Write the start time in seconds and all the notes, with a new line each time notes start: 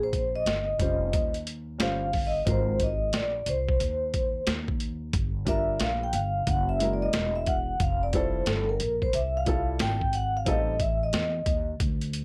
Already playing: A#1
0.03 C5
0.13 kick, closed hi-hat
0.36 D#5
0.46 G1, snare, closed hi-hat
0.78 F1 G3 C#4 F4 C5, kick, closed hi-hat
1.13 D#2, kick, closed hi-hat
1.34 closed hi-hat
1.47 closed hi-hat
1.78 G1 G3 C#4 F4 C5 F5, snare, closed hi-hat
2.13 kick, open hi-hat
2.27 D#5
2.45 G#1 G#3 C4 F4 A#4, kick, closed hi-hat
2.50 C5
2.80 D#5, kick, closed hi-hat
3.13 A#1 D5, snare, closed hi-hat
3.46 C2 C5, closed hi-hat
3.69 kick
3.80 D#2, closed hi-hat
4.14 kick, closed hi-hat
4.47 D#2, snare, closed hi-hat
4.68 kick
4.80 closed hi-hat
5.13 G1, kick, closed hi-hat
5.45 G3 D4 F4 A#4 E5, kick, closed hi-hat
5.80 A#1 F5, snare, closed hi-hat
6.03 G5
6.13 G1 F5, closed hi-hat
6.47 F#1 F#5, kick, closed hi-hat
6.69 E5
6.79 G#3 E4 F#4 A#4, closed hi-hat
6.93 D5
7.02 D#5
7.13 E1, snare, closed hi-hat
7.36 E5
7.46 F#5, kick, closed hi-hat
7.80 F1 F5, kick, closed hi-hat
8.03 D5
8.13 G3 E4 F4 A4 C5, kick, closed hi-hat
8.46 G1 A4, snare, closed hi-hat
8.69 A#4
8.80 A#1, closed hi-hat
9.02 C5, kick
9.13 C2 E5, closed hi-hat
9.37 F5
9.45 G3 E4 F4 A4, kick, closed hi-hat
9.79 G#1 G5, snare, closed hi-hat
10.01 kick
10.13 F#5, closed hi-hat
10.37 F5
10.45 A1 G3 C4 D#4 A4 D#5, kick, closed hi-hat
10.80 E5, kick, closed hi-hat
11.03 D#5
11.13 E2, snare, closed hi-hat
11.46 D#2, kick, closed hi-hat
11.80 D2, kick, closed hi-hat
12.01 closed hi-hat
12.13 closed hi-hat